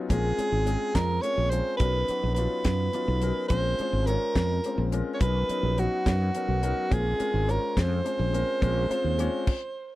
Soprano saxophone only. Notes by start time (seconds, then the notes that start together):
0.10 G#4
0.95 A#4
1.22 C#5
1.50 C5
1.77 B4
2.35 B4
3.48 C5
4.07 A#4
5.14 C#5
5.21 B4
5.79 F#4
6.93 G#4
7.51 A#4
7.79 C5